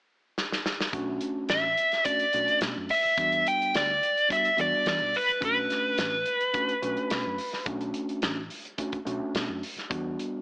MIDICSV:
0, 0, Header, 1, 6, 480
1, 0, Start_track
1, 0, Key_signature, 2, "minor"
1, 0, Tempo, 561220
1, 799, Time_signature, 4, 2, 24, 8
1, 8910, End_track
2, 0, Start_track
2, 0, Title_t, "Lead electric guitar"
2, 0, Program_c, 0, 29
2, 1285, Note_on_c, 0, 76, 93
2, 1753, Note_off_c, 0, 76, 0
2, 1757, Note_on_c, 0, 74, 84
2, 2204, Note_off_c, 0, 74, 0
2, 2487, Note_on_c, 0, 76, 89
2, 2975, Note_on_c, 0, 79, 86
2, 2977, Note_off_c, 0, 76, 0
2, 3191, Note_off_c, 0, 79, 0
2, 3220, Note_on_c, 0, 74, 85
2, 3657, Note_off_c, 0, 74, 0
2, 3700, Note_on_c, 0, 76, 89
2, 3913, Note_off_c, 0, 76, 0
2, 3941, Note_on_c, 0, 74, 85
2, 4154, Note_off_c, 0, 74, 0
2, 4177, Note_on_c, 0, 74, 88
2, 4415, Note_off_c, 0, 74, 0
2, 4415, Note_on_c, 0, 71, 72
2, 4631, Note_off_c, 0, 71, 0
2, 4661, Note_on_c, 0, 71, 69
2, 6536, Note_off_c, 0, 71, 0
2, 8910, End_track
3, 0, Start_track
3, 0, Title_t, "Tine electric piano"
3, 0, Program_c, 1, 4
3, 791, Note_on_c, 1, 57, 74
3, 796, Note_on_c, 1, 62, 71
3, 799, Note_on_c, 1, 61, 72
3, 800, Note_on_c, 1, 66, 88
3, 1417, Note_off_c, 1, 57, 0
3, 1420, Note_off_c, 1, 62, 0
3, 1421, Note_off_c, 1, 61, 0
3, 1422, Note_off_c, 1, 66, 0
3, 1756, Note_on_c, 1, 57, 58
3, 1756, Note_on_c, 1, 61, 55
3, 1756, Note_on_c, 1, 62, 54
3, 1759, Note_on_c, 1, 66, 61
3, 1915, Note_off_c, 1, 57, 0
3, 1915, Note_off_c, 1, 61, 0
3, 1915, Note_off_c, 1, 62, 0
3, 1917, Note_off_c, 1, 66, 0
3, 1999, Note_on_c, 1, 57, 62
3, 1999, Note_on_c, 1, 61, 58
3, 2000, Note_on_c, 1, 62, 62
3, 2004, Note_on_c, 1, 66, 72
3, 2464, Note_off_c, 1, 57, 0
3, 2464, Note_off_c, 1, 61, 0
3, 2464, Note_off_c, 1, 62, 0
3, 2466, Note_off_c, 1, 66, 0
3, 2714, Note_on_c, 1, 55, 69
3, 2715, Note_on_c, 1, 59, 56
3, 2717, Note_on_c, 1, 66, 69
3, 2718, Note_on_c, 1, 62, 62
3, 3339, Note_off_c, 1, 55, 0
3, 3339, Note_off_c, 1, 59, 0
3, 3340, Note_off_c, 1, 66, 0
3, 3341, Note_off_c, 1, 62, 0
3, 3668, Note_on_c, 1, 55, 60
3, 3670, Note_on_c, 1, 59, 54
3, 3675, Note_on_c, 1, 62, 56
3, 3677, Note_on_c, 1, 66, 65
3, 3831, Note_off_c, 1, 55, 0
3, 3832, Note_off_c, 1, 59, 0
3, 3835, Note_off_c, 1, 62, 0
3, 3835, Note_off_c, 1, 66, 0
3, 3907, Note_on_c, 1, 59, 64
3, 3909, Note_on_c, 1, 55, 64
3, 3910, Note_on_c, 1, 66, 73
3, 3912, Note_on_c, 1, 62, 61
3, 4378, Note_off_c, 1, 59, 0
3, 4379, Note_off_c, 1, 55, 0
3, 4379, Note_off_c, 1, 66, 0
3, 4380, Note_off_c, 1, 62, 0
3, 4623, Note_on_c, 1, 61, 62
3, 4625, Note_on_c, 1, 57, 67
3, 4625, Note_on_c, 1, 62, 61
3, 4631, Note_on_c, 1, 66, 72
3, 5253, Note_off_c, 1, 61, 0
3, 5254, Note_off_c, 1, 57, 0
3, 5254, Note_off_c, 1, 62, 0
3, 5257, Note_off_c, 1, 66, 0
3, 5588, Note_on_c, 1, 57, 76
3, 5592, Note_on_c, 1, 62, 69
3, 5593, Note_on_c, 1, 61, 66
3, 5598, Note_on_c, 1, 66, 80
3, 5751, Note_off_c, 1, 57, 0
3, 5753, Note_off_c, 1, 62, 0
3, 5754, Note_off_c, 1, 61, 0
3, 5756, Note_off_c, 1, 66, 0
3, 5834, Note_on_c, 1, 57, 76
3, 5836, Note_on_c, 1, 66, 84
3, 5837, Note_on_c, 1, 61, 71
3, 5839, Note_on_c, 1, 62, 71
3, 6302, Note_off_c, 1, 57, 0
3, 6302, Note_off_c, 1, 66, 0
3, 6303, Note_off_c, 1, 61, 0
3, 6304, Note_off_c, 1, 62, 0
3, 6547, Note_on_c, 1, 57, 79
3, 6547, Note_on_c, 1, 61, 74
3, 6551, Note_on_c, 1, 62, 72
3, 6555, Note_on_c, 1, 66, 82
3, 7175, Note_off_c, 1, 57, 0
3, 7176, Note_off_c, 1, 61, 0
3, 7177, Note_off_c, 1, 62, 0
3, 7180, Note_off_c, 1, 66, 0
3, 7509, Note_on_c, 1, 57, 70
3, 7515, Note_on_c, 1, 61, 66
3, 7516, Note_on_c, 1, 62, 64
3, 7521, Note_on_c, 1, 66, 73
3, 7672, Note_off_c, 1, 57, 0
3, 7675, Note_off_c, 1, 61, 0
3, 7675, Note_off_c, 1, 62, 0
3, 7678, Note_off_c, 1, 66, 0
3, 7743, Note_on_c, 1, 57, 82
3, 7748, Note_on_c, 1, 61, 70
3, 7751, Note_on_c, 1, 62, 73
3, 7755, Note_on_c, 1, 66, 79
3, 8216, Note_off_c, 1, 57, 0
3, 8218, Note_off_c, 1, 61, 0
3, 8220, Note_off_c, 1, 62, 0
3, 8222, Note_off_c, 1, 66, 0
3, 8464, Note_on_c, 1, 55, 78
3, 8468, Note_on_c, 1, 59, 69
3, 8468, Note_on_c, 1, 62, 68
3, 8473, Note_on_c, 1, 66, 83
3, 8910, Note_off_c, 1, 55, 0
3, 8910, Note_off_c, 1, 59, 0
3, 8910, Note_off_c, 1, 62, 0
3, 8910, Note_off_c, 1, 66, 0
3, 8910, End_track
4, 0, Start_track
4, 0, Title_t, "Fingered electric bass"
4, 0, Program_c, 2, 33
4, 798, Note_on_c, 2, 35, 92
4, 1007, Note_off_c, 2, 35, 0
4, 1278, Note_on_c, 2, 33, 78
4, 1487, Note_off_c, 2, 33, 0
4, 2002, Note_on_c, 2, 35, 84
4, 2108, Note_off_c, 2, 35, 0
4, 2233, Note_on_c, 2, 47, 77
4, 2344, Note_off_c, 2, 47, 0
4, 2368, Note_on_c, 2, 42, 79
4, 2467, Note_off_c, 2, 42, 0
4, 2716, Note_on_c, 2, 40, 85
4, 2926, Note_off_c, 2, 40, 0
4, 3208, Note_on_c, 2, 38, 83
4, 3412, Note_off_c, 2, 38, 0
4, 3923, Note_on_c, 2, 40, 93
4, 4029, Note_off_c, 2, 40, 0
4, 4154, Note_on_c, 2, 52, 80
4, 4264, Note_off_c, 2, 52, 0
4, 4282, Note_on_c, 2, 35, 74
4, 4383, Note_off_c, 2, 35, 0
4, 4634, Note_on_c, 2, 35, 84
4, 4845, Note_off_c, 2, 35, 0
4, 5122, Note_on_c, 2, 33, 80
4, 5329, Note_off_c, 2, 33, 0
4, 5840, Note_on_c, 2, 35, 91
4, 5947, Note_off_c, 2, 35, 0
4, 6081, Note_on_c, 2, 47, 78
4, 6188, Note_off_c, 2, 47, 0
4, 6209, Note_on_c, 2, 42, 77
4, 6307, Note_off_c, 2, 42, 0
4, 6554, Note_on_c, 2, 35, 93
4, 6765, Note_off_c, 2, 35, 0
4, 7040, Note_on_c, 2, 33, 79
4, 7248, Note_off_c, 2, 33, 0
4, 7755, Note_on_c, 2, 35, 84
4, 7865, Note_off_c, 2, 35, 0
4, 7991, Note_on_c, 2, 47, 79
4, 8102, Note_off_c, 2, 47, 0
4, 8115, Note_on_c, 2, 42, 78
4, 8219, Note_off_c, 2, 42, 0
4, 8476, Note_on_c, 2, 40, 88
4, 8686, Note_off_c, 2, 40, 0
4, 8910, End_track
5, 0, Start_track
5, 0, Title_t, "Muted fingered electric bass strokes"
5, 2610, Note_on_c, 9, 29, 28
5, 2695, Note_off_c, 9, 29, 0
5, 4529, Note_on_c, 9, 29, 31
5, 4614, Note_off_c, 9, 29, 0
5, 6445, Note_on_c, 9, 29, 31
5, 6531, Note_off_c, 9, 29, 0
5, 8350, Note_on_c, 9, 29, 29
5, 8436, Note_off_c, 9, 29, 0
5, 8910, End_track
6, 0, Start_track
6, 0, Title_t, "Drums"
6, 323, Note_on_c, 9, 38, 64
6, 409, Note_off_c, 9, 38, 0
6, 449, Note_on_c, 9, 38, 64
6, 534, Note_off_c, 9, 38, 0
6, 562, Note_on_c, 9, 38, 83
6, 648, Note_off_c, 9, 38, 0
6, 689, Note_on_c, 9, 38, 84
6, 774, Note_off_c, 9, 38, 0
6, 796, Note_on_c, 9, 42, 73
6, 797, Note_on_c, 9, 36, 91
6, 882, Note_off_c, 9, 42, 0
6, 883, Note_off_c, 9, 36, 0
6, 1032, Note_on_c, 9, 42, 57
6, 1118, Note_off_c, 9, 42, 0
6, 1272, Note_on_c, 9, 42, 78
6, 1280, Note_on_c, 9, 38, 99
6, 1357, Note_off_c, 9, 42, 0
6, 1365, Note_off_c, 9, 38, 0
6, 1518, Note_on_c, 9, 42, 55
6, 1604, Note_off_c, 9, 42, 0
6, 1640, Note_on_c, 9, 42, 37
6, 1648, Note_on_c, 9, 38, 33
6, 1726, Note_off_c, 9, 42, 0
6, 1733, Note_off_c, 9, 38, 0
6, 1753, Note_on_c, 9, 42, 82
6, 1757, Note_on_c, 9, 36, 81
6, 1839, Note_off_c, 9, 42, 0
6, 1843, Note_off_c, 9, 36, 0
6, 1877, Note_on_c, 9, 42, 38
6, 1963, Note_off_c, 9, 42, 0
6, 1992, Note_on_c, 9, 42, 62
6, 2078, Note_off_c, 9, 42, 0
6, 2120, Note_on_c, 9, 42, 33
6, 2206, Note_off_c, 9, 42, 0
6, 2231, Note_on_c, 9, 42, 75
6, 2239, Note_on_c, 9, 38, 104
6, 2317, Note_off_c, 9, 42, 0
6, 2325, Note_off_c, 9, 38, 0
6, 2473, Note_on_c, 9, 46, 73
6, 2559, Note_off_c, 9, 46, 0
6, 2715, Note_on_c, 9, 42, 74
6, 2717, Note_on_c, 9, 36, 96
6, 2801, Note_off_c, 9, 42, 0
6, 2803, Note_off_c, 9, 36, 0
6, 2841, Note_on_c, 9, 42, 36
6, 2927, Note_off_c, 9, 42, 0
6, 2964, Note_on_c, 9, 42, 58
6, 3050, Note_off_c, 9, 42, 0
6, 3094, Note_on_c, 9, 42, 35
6, 3180, Note_off_c, 9, 42, 0
6, 3203, Note_on_c, 9, 42, 70
6, 3211, Note_on_c, 9, 38, 93
6, 3289, Note_off_c, 9, 42, 0
6, 3296, Note_off_c, 9, 38, 0
6, 3447, Note_on_c, 9, 42, 56
6, 3533, Note_off_c, 9, 42, 0
6, 3571, Note_on_c, 9, 42, 35
6, 3656, Note_off_c, 9, 42, 0
6, 3681, Note_on_c, 9, 36, 85
6, 3688, Note_on_c, 9, 42, 75
6, 3766, Note_off_c, 9, 36, 0
6, 3774, Note_off_c, 9, 42, 0
6, 3804, Note_on_c, 9, 42, 33
6, 3890, Note_off_c, 9, 42, 0
6, 3918, Note_on_c, 9, 42, 54
6, 4003, Note_off_c, 9, 42, 0
6, 4157, Note_on_c, 9, 42, 67
6, 4165, Note_on_c, 9, 38, 97
6, 4243, Note_off_c, 9, 42, 0
6, 4250, Note_off_c, 9, 38, 0
6, 4399, Note_on_c, 9, 46, 72
6, 4484, Note_off_c, 9, 46, 0
6, 4523, Note_on_c, 9, 42, 31
6, 4609, Note_off_c, 9, 42, 0
6, 4635, Note_on_c, 9, 36, 91
6, 4637, Note_on_c, 9, 42, 69
6, 4721, Note_off_c, 9, 36, 0
6, 4723, Note_off_c, 9, 42, 0
6, 4877, Note_on_c, 9, 42, 55
6, 4885, Note_on_c, 9, 38, 31
6, 4963, Note_off_c, 9, 42, 0
6, 4970, Note_off_c, 9, 38, 0
6, 5112, Note_on_c, 9, 42, 77
6, 5120, Note_on_c, 9, 38, 99
6, 5198, Note_off_c, 9, 42, 0
6, 5205, Note_off_c, 9, 38, 0
6, 5351, Note_on_c, 9, 42, 58
6, 5436, Note_off_c, 9, 42, 0
6, 5479, Note_on_c, 9, 42, 37
6, 5564, Note_off_c, 9, 42, 0
6, 5593, Note_on_c, 9, 42, 83
6, 5596, Note_on_c, 9, 36, 83
6, 5678, Note_off_c, 9, 42, 0
6, 5681, Note_off_c, 9, 36, 0
6, 5719, Note_on_c, 9, 42, 36
6, 5805, Note_off_c, 9, 42, 0
6, 5839, Note_on_c, 9, 42, 60
6, 5924, Note_off_c, 9, 42, 0
6, 5959, Note_on_c, 9, 42, 33
6, 6045, Note_off_c, 9, 42, 0
6, 6075, Note_on_c, 9, 42, 78
6, 6083, Note_on_c, 9, 38, 98
6, 6161, Note_off_c, 9, 42, 0
6, 6169, Note_off_c, 9, 38, 0
6, 6314, Note_on_c, 9, 46, 73
6, 6400, Note_off_c, 9, 46, 0
6, 6442, Note_on_c, 9, 38, 31
6, 6527, Note_off_c, 9, 38, 0
6, 6552, Note_on_c, 9, 42, 70
6, 6554, Note_on_c, 9, 36, 95
6, 6638, Note_off_c, 9, 42, 0
6, 6639, Note_off_c, 9, 36, 0
6, 6676, Note_on_c, 9, 42, 37
6, 6762, Note_off_c, 9, 42, 0
6, 6790, Note_on_c, 9, 42, 59
6, 6876, Note_off_c, 9, 42, 0
6, 6920, Note_on_c, 9, 42, 37
6, 7005, Note_off_c, 9, 42, 0
6, 7031, Note_on_c, 9, 42, 75
6, 7039, Note_on_c, 9, 38, 102
6, 7116, Note_off_c, 9, 42, 0
6, 7124, Note_off_c, 9, 38, 0
6, 7272, Note_on_c, 9, 46, 61
6, 7358, Note_off_c, 9, 46, 0
6, 7399, Note_on_c, 9, 42, 36
6, 7484, Note_off_c, 9, 42, 0
6, 7511, Note_on_c, 9, 42, 80
6, 7513, Note_on_c, 9, 36, 80
6, 7596, Note_off_c, 9, 42, 0
6, 7598, Note_off_c, 9, 36, 0
6, 7632, Note_on_c, 9, 42, 35
6, 7637, Note_on_c, 9, 36, 77
6, 7718, Note_off_c, 9, 42, 0
6, 7722, Note_off_c, 9, 36, 0
6, 7754, Note_on_c, 9, 42, 54
6, 7840, Note_off_c, 9, 42, 0
6, 7995, Note_on_c, 9, 42, 72
6, 8003, Note_on_c, 9, 38, 98
6, 8080, Note_off_c, 9, 42, 0
6, 8088, Note_off_c, 9, 38, 0
6, 8238, Note_on_c, 9, 46, 73
6, 8323, Note_off_c, 9, 46, 0
6, 8359, Note_on_c, 9, 42, 34
6, 8367, Note_on_c, 9, 38, 32
6, 8445, Note_off_c, 9, 42, 0
6, 8452, Note_off_c, 9, 38, 0
6, 8473, Note_on_c, 9, 42, 67
6, 8474, Note_on_c, 9, 36, 96
6, 8559, Note_off_c, 9, 36, 0
6, 8559, Note_off_c, 9, 42, 0
6, 8719, Note_on_c, 9, 42, 55
6, 8805, Note_off_c, 9, 42, 0
6, 8910, End_track
0, 0, End_of_file